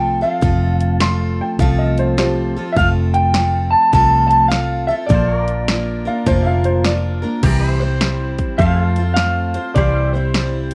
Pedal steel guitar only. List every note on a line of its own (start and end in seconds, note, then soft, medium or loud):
0.00 5.05 F4 medium
0.00 5.06 A4 medium
0.00 5.06 C5 medium
5.12 7.42 F4 medium
5.12 5.34 A4 medium
5.12 5.39 C5 medium
5.34 7.43 A#4 medium
5.39 7.43 D5 medium
7.44 8.58 G4 medium
7.44 7.71 A#4 medium
7.44 7.71 D5 medium
7.71 8.59 C5 medium
7.71 8.60 E5 medium
8.59 8.84 G4 medium
8.59 9.75 C5 medium
8.59 8.81 E5 medium
8.81 9.75 A4 medium
8.81 9.76 F5 medium
9.78 10.74 G4 medium
9.78 10.74 C5 medium
9.78 9.99 F5 medium
9.99 10.74 E5 medium